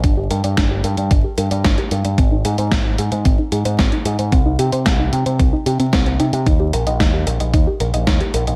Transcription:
<<
  \new Staff \with { instrumentName = "Synth arpeggio sound" } { \time 4/4 \key ees \major \tempo 4 = 112 d'16 g'16 bes'16 d''16 d'16 g'16 bes'16 d''16 d'16 g'16 bes'16 d''16 d'16 g'16 bes'16 d''16 | c'16 ees'16 aes'16 c''16 c'16 ees'16 aes'16 c''16 c'16 ees'16 aes'16 c''16 c'16 ees'16 aes'16 c''16 | c'16 ees'16 g'16 c''16 c'16 ees'16 g'16 c''16 c'16 ees'16 g'16 c'16 c'16 c'16 ees'16 g'16 | ees'16 g'16 bes'16 ees''16 ees'16 g'16 bes'16 ees''16 ees'16 g'16 bes'16 ees''16 ees'16 g'16 bes'16 ees''16 | }
  \new Staff \with { instrumentName = "Picked electric bass" } { \clef bass \time 4/4 \key ees \major g,,8 g,16 g,16 g,,8 g,16 g,16 g,,16 r16 g,16 g,16 g,,16 r16 g,16 g,16 | aes,,8 aes,16 aes,16 aes,,8 aes,16 aes,16 aes,,16 r16 aes,16 aes,16 aes,,16 r16 aes,16 aes,16 | c,8 c16 c16 c,8 c16 c16 c,16 r16 c16 c16 c,8 c16 c16 | ees,8 bes,,16 bes,,16 ees,8 bes,,16 bes,,16 ees,16 r16 bes,,16 bes,,16 ees,16 r16 bes,,16 bes,,16 | }
  \new DrumStaff \with { instrumentName = "Drums" } \drummode { \time 4/4 <hh bd>8 hh16 hh16 <hh bd sn>8 hh16 hh16 <hh bd>8 hh16 hh16 <hh bd sn>16 hh16 hh16 hh16 | <hh bd>8 hh16 hh16 <hh bd sn>8 hh16 hh16 <hh bd>8 hh16 hh16 <hh bd sn>16 hh16 hh16 hh16 | <hh bd>8 hh16 hh16 <hh bd sn>8 hh16 hh16 <hh bd>8 hh16 hh16 <hh bd sn>16 hh16 hh16 hh16 | <hh bd>8 hh16 hh16 <hh bd sn>8 hh16 hh16 <hh bd>8 hh16 hh16 <hh bd sn>16 hh16 hh16 hh16 | }
>>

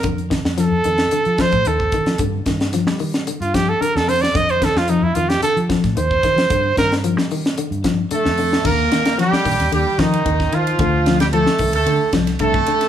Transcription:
<<
  \new Staff \with { instrumentName = "Trumpet" } { \time 4/4 \key f \mixolydian \tempo 4 = 112 r4 a'4. c''8 a'4 | r2 r16 f'16 g'16 a'16 bes'16 a'16 c''16 d''16 | ees''16 c''16 a'16 f'16 ees'16 e'16 f'16 g'16 a'8 r8 c''4~ | c''8 bes'8 r2. |
r1 | r1 | }
  \new Staff \with { instrumentName = "Horn section" } { \time 4/4 \key f \mixolydian r1 | r1 | r1 | r2. <a a'>4 |
<bes bes'>4 <g g'>4 <g g'>8 <ees ees'>4 <f f'>8~ | <f f'>8. <g g'>16 <a a'>8. <a a'>8. r8 <a a'>4 | }
  \new Staff \with { instrumentName = "Clean electric guitar" } { \clef bass \time 4/4 \key f \mixolydian d8 ees8 f8 ees8 d8 f8 ees8 ees8 | d8 ees8 f8 ees8 d8 f8 d8 d8 | d8 ees8 f8 ees8 d8 f8 ees8 ees8 | d8 ees8 f8 ees8 d8 f8 d8 d8 |
d8 ees8 f8 ees8 d8 f8 ees8 ees8 | d8 f8 f8 ees8 d8 f8 d8 d8 | }
  \new Staff \with { instrumentName = "Fingered electric bass" } { \clef bass \time 4/4 \key f \mixolydian f,8. f,8 f,16 f,8 r16 f16 r16 a,16 ees,8 r16 f16 | g,8 g,8. g4 g,8. r16 f,8. | f,8. f,8 f,16 f,8 r16 f16 r16 a,16 ees,8 r16 f16 | g,8 g,8. g4 g,8. r16 f,8. |
ees,8 r4 bes,,16 ees,16 ees,16 r16 ees8 ees,8 ees8 | d,4. c,16 d,16 d16 r16 c,8 c,8 r8 | }
  \new DrumStaff \with { instrumentName = "Drums" } \drummode { \time 4/4 <hh bd>16 hh16 <hh bd sn>16 sn16 <hh sn>8 hh16 <hh sn>16 hh16 hh16 <hh bd sn>16 <hh bd>16 hh16 bd16 <hh bd>16 <hh sn>16 | <hh bd>8 <hh bd sn>16 <hh sn>16 <hh sn>16 sn16 hho16 <hh sn>16 hh16 hh16 <hh bd sn>8 hh16 sn16 <hho sn>16 sn16 | <hh bd>16 hh16 <hh bd sn>16 sn16 hh8 hh16 <hh sn>16 hh16 hh16 <hh bd sn>16 <hh bd sn>16 hh16 bd16 <hh bd sn>16 <hh sn>16 | <hh bd>8 <hh bd sn>16 <hh sn>16 hh16 sn16 hho16 <hh sn>16 hh16 hh16 <hh bd sn>8 hh16 sn16 hho16 sn16 |
<cymc bd>8 <rb sn>16 <rb sn>16 <rb sn>16 sn16 <hho bd sn>16 <rb sn>16 rb8 <bd rb sn>16 rb16 <bd rb>16 <bd sn>16 rb16 rb16 | <bd rb>8 <rb sn>16 <rb sn>16 rb16 sn16 <hho bd>16 rb16 rb8 <bd rb sn>16 <rb sn>16 <bd rb>16 bd16 rb16 <rb sn>16 | }
>>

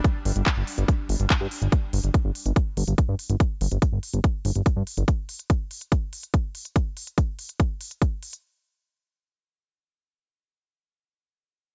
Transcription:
<<
  \new Staff \with { instrumentName = "Synth texture" } { \time 4/4 \key c \minor \tempo 4 = 143 <g d'>1 | r1 | r1 | r1 |
r1 | r1 | r1 | }
  \new Staff \with { instrumentName = "Analog synth bass" } { \clef bass \time 4/4 \key c \minor r8 g,,16 g,,16 r16 g,,16 r16 g,,16 r8 g,,16 g,,16 r16 g,16 r16 g,,16 | r8 g,,16 g,,16 r16 g,,16 r16 g,,16 r8 g,,16 g,,16 r16 g,16 r16 g,,16 | r8 g,,16 g,,16 r16 g,,16 r16 g,,16 r8 g,,16 g,,16 r16 g,16 r16 g,,16 | r1 |
r1 | r1 | r1 | }
  \new DrumStaff \with { instrumentName = "Drums" } \drummode { \time 4/4 <hh bd>8 hho16 hh16 <hc hh bd>8 hho16 hh16 <hh bd>8 hho16 hh16 <hc hh bd>8 hho16 hh16 | <hh bd>8 hho16 hh16 <hh bd>8 hho16 hh16 <hh bd>8 hho16 hh16 <hh bd>8 hho16 hh16 | <hh bd>8 hho16 hh16 <hh bd>8 hho16 hh16 <hh bd>8 hho16 hh16 <hh bd>8 hho16 hh16 | <hh bd>8 hho16 hh16 <hh bd>8 hho16 hh16 <hh bd>8 hho16 hh16 <hh bd>8 hho16 hh16 |
<hh bd>8 hho16 hh16 <hh bd>8 hho16 hh16 <hh bd>8 hho16 hh16 <hh bd>8 hho16 hh16 | r4 r4 r4 r4 | r4 r4 r4 r4 | }
>>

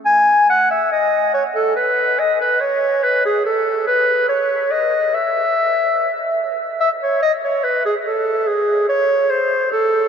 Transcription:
\new Staff \with { instrumentName = "Clarinet" } { \time 4/4 \key e \major \tempo 4 = 72 gis''8 fis''16 e''16 dis''8 cis''16 a'16 b'8 dis''16 b'16 cis''8 b'16 gis'16 | a'8 b'8 cis''8 dis''8 e''4. r8 | e''16 cis''16 dis''16 cis''16 b'16 gis'16 a'8 gis'8 cis''8 c''8 a'8 | }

